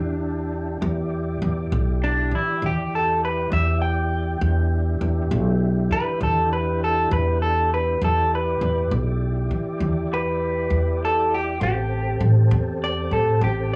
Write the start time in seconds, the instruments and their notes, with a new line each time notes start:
Already playing: upright bass E2, tonewheel organ D4 E4 G4, clean electric guitar D4
0.81 upright bass E2, tonewheel organ E4 G4 D5
1.42 upright bass E2
1.72 upright bass B1
2.04 clean electric guitar D4
2.31 upright bass E3, clean electric guitar E4
2.62 upright bass E2, clean electric guitar G4
2.95 clean electric guitar A4
3.25 clean electric guitar B4
3.52 upright bass E2, clean electric guitar E5
3.82 clean electric guitar G5
4.41 upright bass E2, tonewheel organ D4 E4 G4
5.01 upright bass E2
5.31 upright bass B1
5.91 upright bass E3, clean electric guitar B4
6.21 upright bass E2, clean electric guitar A4
6.53 clean electric guitar B4
6.84 clean electric guitar A4
7.11 upright bass E2, clean electric guitar B4
7.42 clean electric guitar A4
7.74 clean electric guitar B4
8.02 upright bass E2, tonewheel organ E4 G4 D5, clean electric guitar A4
8.35 clean electric guitar B4
8.61 upright bass E2
8.91 upright bass B1
9.51 upright bass E3
9.80 upright bass E2
10.14 clean electric guitar B4
10.70 upright bass E2
11.05 clean electric guitar A4
11.35 clean electric guitar G4
11.61 upright bass A1, tonewheel organ C4 G4 A4, clean electric guitar G4
12.21 upright bass A1
12.51 upright bass E2
12.84 clean electric guitar D5
13.11 upright bass A2, clean electric guitar A4
13.41 upright bass A1, clean electric guitar G4